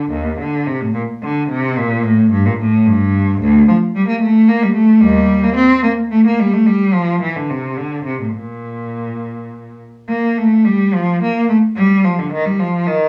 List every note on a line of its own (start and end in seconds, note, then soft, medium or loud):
0.00 0.10 D3 medium
0.10 0.39 D#2 medium
0.39 0.67 D3 medium
0.67 0.81 C3 medium
0.81 0.95 A2 medium
0.94 1.02 A#2 medium
1.23 1.50 D3 medium
1.50 1.77 C3 medium
1.78 2.05 A#2 medium
2.03 2.32 A2 medium
2.31 2.45 G2 medium
2.46 2.60 A#2 medium
2.59 2.86 A2 medium
2.86 3.41 G2 loud
3.41 3.68 D2 loud
3.69 3.77 F3 medium
3.95 4.08 G3 loud
4.08 4.21 A#3 medium
4.21 4.48 A3 medium
4.48 4.62 A#3 loud
4.63 4.76 G3 loud
4.74 5.02 A3 medium
5.01 5.40 D#2 medium
5.01 5.43 G3 medium
5.44 5.57 A#3 medium
5.56 5.83 C4 medium
5.84 5.92 A#3 medium
6.11 6.25 A3 medium
6.26 6.40 A#3 medium
6.40 6.53 G3 medium
6.54 6.67 A3 medium
6.67 6.94 G3 medium
6.94 7.22 F3 medium
7.22 7.35 E3 medium
7.36 7.50 D3 medium
7.50 7.77 C3 medium
7.78 8.06 D3 medium
8.04 8.19 C3 medium
8.20 8.26 A2 medium
8.33 9.77 A#2 medium
10.09 10.36 A#3 medium
10.38 10.67 A3 medium
10.65 10.94 G3 medium
10.94 11.23 F3 medium
11.23 11.50 A#3 medium
11.49 11.57 A3 medium
11.77 12.04 G3 medium
12.04 12.19 F3 medium
12.19 12.33 D3 medium
12.32 12.46 D#3 medium
12.46 12.60 G3 medium
12.59 12.88 F3 medium
12.87 13.09 D#3 medium